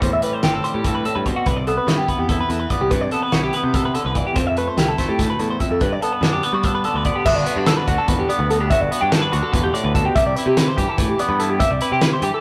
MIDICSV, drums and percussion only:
0, 0, Header, 1, 2, 480
1, 0, Start_track
1, 0, Key_signature, 1, "major"
1, 0, Tempo, 413793
1, 21, Time_signature, 7, 3, 24, 8
1, 14390, End_track
2, 0, Start_track
2, 0, Title_t, "Drums"
2, 22, Note_on_c, 9, 36, 91
2, 24, Note_on_c, 9, 42, 69
2, 138, Note_off_c, 9, 36, 0
2, 140, Note_off_c, 9, 42, 0
2, 258, Note_on_c, 9, 42, 55
2, 374, Note_off_c, 9, 42, 0
2, 496, Note_on_c, 9, 42, 71
2, 498, Note_on_c, 9, 38, 94
2, 612, Note_off_c, 9, 42, 0
2, 614, Note_off_c, 9, 38, 0
2, 745, Note_on_c, 9, 42, 56
2, 861, Note_off_c, 9, 42, 0
2, 979, Note_on_c, 9, 42, 70
2, 980, Note_on_c, 9, 36, 77
2, 1095, Note_off_c, 9, 42, 0
2, 1096, Note_off_c, 9, 36, 0
2, 1220, Note_on_c, 9, 42, 53
2, 1336, Note_off_c, 9, 42, 0
2, 1459, Note_on_c, 9, 36, 64
2, 1461, Note_on_c, 9, 42, 55
2, 1575, Note_off_c, 9, 36, 0
2, 1577, Note_off_c, 9, 42, 0
2, 1692, Note_on_c, 9, 42, 61
2, 1698, Note_on_c, 9, 36, 80
2, 1808, Note_off_c, 9, 42, 0
2, 1814, Note_off_c, 9, 36, 0
2, 1938, Note_on_c, 9, 42, 50
2, 2054, Note_off_c, 9, 42, 0
2, 2180, Note_on_c, 9, 42, 68
2, 2183, Note_on_c, 9, 38, 93
2, 2296, Note_off_c, 9, 42, 0
2, 2299, Note_off_c, 9, 38, 0
2, 2417, Note_on_c, 9, 36, 60
2, 2419, Note_on_c, 9, 42, 50
2, 2533, Note_off_c, 9, 36, 0
2, 2535, Note_off_c, 9, 42, 0
2, 2656, Note_on_c, 9, 36, 81
2, 2656, Note_on_c, 9, 42, 62
2, 2772, Note_off_c, 9, 36, 0
2, 2772, Note_off_c, 9, 42, 0
2, 2898, Note_on_c, 9, 42, 50
2, 3014, Note_off_c, 9, 42, 0
2, 3133, Note_on_c, 9, 42, 52
2, 3135, Note_on_c, 9, 36, 66
2, 3249, Note_off_c, 9, 42, 0
2, 3251, Note_off_c, 9, 36, 0
2, 3375, Note_on_c, 9, 42, 67
2, 3377, Note_on_c, 9, 36, 95
2, 3491, Note_off_c, 9, 42, 0
2, 3493, Note_off_c, 9, 36, 0
2, 3612, Note_on_c, 9, 42, 52
2, 3728, Note_off_c, 9, 42, 0
2, 3852, Note_on_c, 9, 42, 67
2, 3855, Note_on_c, 9, 38, 89
2, 3968, Note_off_c, 9, 42, 0
2, 3971, Note_off_c, 9, 38, 0
2, 4094, Note_on_c, 9, 42, 53
2, 4210, Note_off_c, 9, 42, 0
2, 4337, Note_on_c, 9, 36, 88
2, 4338, Note_on_c, 9, 42, 66
2, 4453, Note_off_c, 9, 36, 0
2, 4454, Note_off_c, 9, 42, 0
2, 4578, Note_on_c, 9, 42, 59
2, 4694, Note_off_c, 9, 42, 0
2, 4816, Note_on_c, 9, 42, 55
2, 4819, Note_on_c, 9, 36, 65
2, 4932, Note_off_c, 9, 42, 0
2, 4935, Note_off_c, 9, 36, 0
2, 5054, Note_on_c, 9, 42, 74
2, 5058, Note_on_c, 9, 36, 91
2, 5170, Note_off_c, 9, 42, 0
2, 5174, Note_off_c, 9, 36, 0
2, 5298, Note_on_c, 9, 42, 54
2, 5414, Note_off_c, 9, 42, 0
2, 5540, Note_on_c, 9, 42, 71
2, 5542, Note_on_c, 9, 38, 93
2, 5656, Note_off_c, 9, 42, 0
2, 5658, Note_off_c, 9, 38, 0
2, 5780, Note_on_c, 9, 42, 49
2, 5782, Note_on_c, 9, 36, 60
2, 5782, Note_on_c, 9, 38, 31
2, 5896, Note_off_c, 9, 42, 0
2, 5898, Note_off_c, 9, 36, 0
2, 5898, Note_off_c, 9, 38, 0
2, 6020, Note_on_c, 9, 36, 84
2, 6022, Note_on_c, 9, 42, 68
2, 6025, Note_on_c, 9, 38, 28
2, 6136, Note_off_c, 9, 36, 0
2, 6138, Note_off_c, 9, 42, 0
2, 6141, Note_off_c, 9, 38, 0
2, 6257, Note_on_c, 9, 42, 53
2, 6373, Note_off_c, 9, 42, 0
2, 6497, Note_on_c, 9, 42, 48
2, 6499, Note_on_c, 9, 36, 67
2, 6613, Note_off_c, 9, 42, 0
2, 6615, Note_off_c, 9, 36, 0
2, 6736, Note_on_c, 9, 42, 60
2, 6741, Note_on_c, 9, 36, 93
2, 6852, Note_off_c, 9, 42, 0
2, 6857, Note_off_c, 9, 36, 0
2, 6986, Note_on_c, 9, 42, 54
2, 7102, Note_off_c, 9, 42, 0
2, 7223, Note_on_c, 9, 42, 65
2, 7225, Note_on_c, 9, 38, 97
2, 7339, Note_off_c, 9, 42, 0
2, 7341, Note_off_c, 9, 38, 0
2, 7460, Note_on_c, 9, 42, 53
2, 7576, Note_off_c, 9, 42, 0
2, 7694, Note_on_c, 9, 42, 62
2, 7699, Note_on_c, 9, 36, 83
2, 7810, Note_off_c, 9, 42, 0
2, 7815, Note_off_c, 9, 36, 0
2, 7935, Note_on_c, 9, 42, 50
2, 8051, Note_off_c, 9, 42, 0
2, 8173, Note_on_c, 9, 42, 55
2, 8178, Note_on_c, 9, 36, 67
2, 8289, Note_off_c, 9, 42, 0
2, 8294, Note_off_c, 9, 36, 0
2, 8417, Note_on_c, 9, 49, 94
2, 8418, Note_on_c, 9, 36, 100
2, 8533, Note_off_c, 9, 49, 0
2, 8534, Note_off_c, 9, 36, 0
2, 8656, Note_on_c, 9, 42, 67
2, 8772, Note_off_c, 9, 42, 0
2, 8890, Note_on_c, 9, 42, 91
2, 8892, Note_on_c, 9, 38, 108
2, 9006, Note_off_c, 9, 42, 0
2, 9008, Note_off_c, 9, 38, 0
2, 9136, Note_on_c, 9, 42, 65
2, 9137, Note_on_c, 9, 36, 64
2, 9252, Note_off_c, 9, 42, 0
2, 9253, Note_off_c, 9, 36, 0
2, 9373, Note_on_c, 9, 42, 79
2, 9376, Note_on_c, 9, 36, 94
2, 9489, Note_off_c, 9, 42, 0
2, 9492, Note_off_c, 9, 36, 0
2, 9625, Note_on_c, 9, 42, 65
2, 9741, Note_off_c, 9, 42, 0
2, 9866, Note_on_c, 9, 42, 59
2, 9982, Note_off_c, 9, 42, 0
2, 10099, Note_on_c, 9, 36, 89
2, 10100, Note_on_c, 9, 42, 74
2, 10215, Note_off_c, 9, 36, 0
2, 10216, Note_off_c, 9, 42, 0
2, 10347, Note_on_c, 9, 42, 63
2, 10463, Note_off_c, 9, 42, 0
2, 10579, Note_on_c, 9, 42, 79
2, 10581, Note_on_c, 9, 38, 100
2, 10695, Note_off_c, 9, 42, 0
2, 10697, Note_off_c, 9, 38, 0
2, 10822, Note_on_c, 9, 42, 58
2, 10938, Note_off_c, 9, 42, 0
2, 11061, Note_on_c, 9, 36, 89
2, 11064, Note_on_c, 9, 42, 77
2, 11177, Note_off_c, 9, 36, 0
2, 11180, Note_off_c, 9, 42, 0
2, 11307, Note_on_c, 9, 42, 68
2, 11423, Note_off_c, 9, 42, 0
2, 11542, Note_on_c, 9, 36, 78
2, 11545, Note_on_c, 9, 42, 63
2, 11658, Note_off_c, 9, 36, 0
2, 11661, Note_off_c, 9, 42, 0
2, 11782, Note_on_c, 9, 36, 98
2, 11785, Note_on_c, 9, 42, 79
2, 11898, Note_off_c, 9, 36, 0
2, 11901, Note_off_c, 9, 42, 0
2, 12023, Note_on_c, 9, 42, 70
2, 12139, Note_off_c, 9, 42, 0
2, 12261, Note_on_c, 9, 42, 91
2, 12263, Note_on_c, 9, 38, 94
2, 12377, Note_off_c, 9, 42, 0
2, 12379, Note_off_c, 9, 38, 0
2, 12502, Note_on_c, 9, 36, 69
2, 12507, Note_on_c, 9, 42, 66
2, 12618, Note_off_c, 9, 36, 0
2, 12623, Note_off_c, 9, 42, 0
2, 12738, Note_on_c, 9, 42, 84
2, 12740, Note_on_c, 9, 36, 85
2, 12854, Note_off_c, 9, 42, 0
2, 12856, Note_off_c, 9, 36, 0
2, 12983, Note_on_c, 9, 42, 66
2, 13099, Note_off_c, 9, 42, 0
2, 13221, Note_on_c, 9, 42, 66
2, 13337, Note_off_c, 9, 42, 0
2, 13458, Note_on_c, 9, 36, 93
2, 13460, Note_on_c, 9, 42, 80
2, 13574, Note_off_c, 9, 36, 0
2, 13576, Note_off_c, 9, 42, 0
2, 13697, Note_on_c, 9, 42, 64
2, 13813, Note_off_c, 9, 42, 0
2, 13935, Note_on_c, 9, 42, 84
2, 13938, Note_on_c, 9, 38, 104
2, 14051, Note_off_c, 9, 42, 0
2, 14054, Note_off_c, 9, 38, 0
2, 14177, Note_on_c, 9, 42, 66
2, 14293, Note_off_c, 9, 42, 0
2, 14390, End_track
0, 0, End_of_file